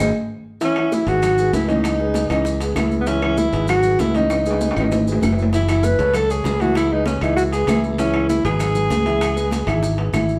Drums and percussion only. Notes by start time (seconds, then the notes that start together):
0.61 high bongo, high conga, high timbale, maracas
0.76 high bongo, high conga, high timbale, claves
0.92 high bongo, high conga, maracas
1.07 high bongo, high timbale, maracas
1.23 high bongo, high conga, low conga, high timbale, claves, maracas
1.38 high bongo, high conga, maracas
1.53 high bongo, low bongo, high conga, high timbale, maracas
1.69 high conga, high timbale, maracas
1.84 high bongo, high conga, high timbale, claves, maracas
1.99 high bongo, high conga
2.14 high bongo, high conga, high timbale, maracas
2.30 high bongo, high conga, high timbale, claves, maracas
2.45 high bongo, high conga, maracas
2.60 high bongo, high conga, high timbale, maracas
2.76 high bongo, low bongo, high conga, high timbale, claves, maracas
2.91 high conga, maracas
3.07 high bongo, high conga, high timbale, maracas
3.22 high bongo, high conga, high timbale, claves
3.37 high bongo, high conga, maracas
3.52 high bongo, high conga, high timbale, maracas
3.68 high bongo, high conga, low conga, high timbale, claves, maracas
3.83 high bongo, high conga, low conga, maracas
3.99 high bongo, low bongo, high conga, high timbale, maracas
4.15 high conga, high timbale, maracas
4.30 high bongo, high timbale, claves, maracas
4.45 high bongo, high conga, maracas
4.51 high timbale
4.61 high bongo, high conga, maracas
4.71 high timbale
4.77 high bongo, low timbale, claves, maracas
4.92 high bongo, low timbale, maracas
5.07 high bongo, maracas
5.12 low timbale
5.21 high bongo, low bongo, high conga, low timbale, claves, maracas
5.33 low timbale
5.38 maracas
5.42 low timbale
5.53 high bongo, high timbale, maracas
5.68 high bongo, high conga, high timbale, claves, maracas
5.83 high bongo, high conga, maracas
5.99 high bongo, high timbale, maracas
6.14 high bongo, high conga, low conga, high timbale, claves, maracas
6.29 high bongo, high conga, maracas
6.44 high bongo, low bongo, high conga, high timbale, low timbale, maracas
6.60 high conga, high timbale, maracas
6.75 high bongo, high conga, high timbale, claves, maracas
6.91 high bongo, high conga
7.06 high bongo, high conga, high timbale, maracas
7.21 high bongo, high conga, high timbale, claves, maracas
7.37 high bongo, high conga, maracas
7.52 high bongo, high conga, high timbale, maracas
7.67 high bongo, low bongo, high conga, high timbale, low timbale, claves, maracas
7.84 maracas
7.98 high bongo, high conga, high timbale, maracas
8.14 high bongo, high conga, high timbale, claves
8.29 high bongo, high conga, maracas
8.45 high bongo, high conga, high timbale, maracas
8.60 high bongo, high conga, low conga, high timbale, claves, maracas
8.75 high bongo, high conga, low conga, maracas
8.90 high bongo, low bongo, high conga, high timbale, maracas
9.06 high conga, high timbale, maracas
9.21 high bongo, high conga, high timbale, claves, maracas
9.36 high bongo, high conga, maracas
9.51 high bongo, high conga, high timbale, maracas
9.67 high bongo, high conga, high timbale, claves, maracas
9.82 high bongo, high conga, maracas
9.98 high bongo, high conga, high timbale
10.14 high bongo, low bongo, high conga, high timbale, claves, maracas
10.29 maracas